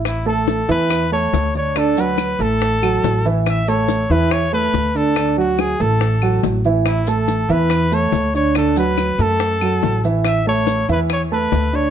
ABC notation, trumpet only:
X:1
M:4/4
L:1/8
Q:1/4=141
K:A
V:1 name="Trumpet"
E A2 B2 c2 c | A B2 A4 z | e c2 B c B2 A- | A F G A3 z2 |
E A2 B2 c2 c | A B2 A4 z | e c2 B c B2 c |]